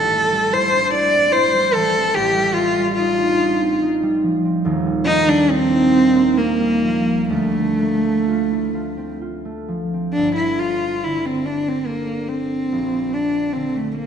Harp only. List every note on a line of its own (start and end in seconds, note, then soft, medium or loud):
0.00 2.15 A1 medium
0.00 0.31 G3 soft
0.13 0.47 A3 soft
0.32 1.53 G3 medium
0.53 0.92 E4 medium
0.73 1.08 D4 soft
0.93 1.32 E4 medium
1.14 1.95 C4 medium
1.34 2.18 E4 medium
1.54 2.35 G3 medium
1.75 2.19 E3 medium
1.96 3.60 C4 medium
2.17 4.69 A1 medium
2.37 2.77 G3 medium
2.58 2.92 A3 medium
2.78 4.01 G3 medium
2.99 3.39 D#4 medium
3.19 3.54 D4 medium
3.40 3.81 D#4 medium
3.61 4.44 C4 medium
3.82 5.48 D#4 medium
4.03 4.85 G3 medium
4.23 6.82 F3 medium
4.45 8.35 C4 medium
4.64 7.34 D#1 medium
4.64 7.35 D#2 medium
4.86 5.26 G3 medium
5.08 5.43 A3 medium
5.28 6.59 G3 medium
5.49 5.91 D#4 medium
5.71 6.08 D4 soft
5.93 6.36 D#4 medium
6.15 7.05 A#3 medium
6.37 7.35 D#4 medium
6.60 7.35 G3 medium
6.84 9.67 F3 medium
7.07 7.35 A#3 medium
7.30 10.18 D2 medium
7.55 8.03 A3 soft
7.79 8.20 A#3 soft
8.04 9.44 A3 medium
8.28 8.73 F4 medium
8.50 8.90 E4 soft
8.75 9.20 F4 medium
8.97 9.92 C4 soft
9.21 10.19 F4 medium
9.45 12.76 A3 medium
9.68 10.18 F3 soft
9.94 10.19 C4 soft
10.17 12.76 G1 medium
11.05 12.75 D3 soft
11.89 14.06 D4 soft
11.89 12.76 A4 soft
12.72 14.06 A#1 medium
13.55 14.06 D3 soft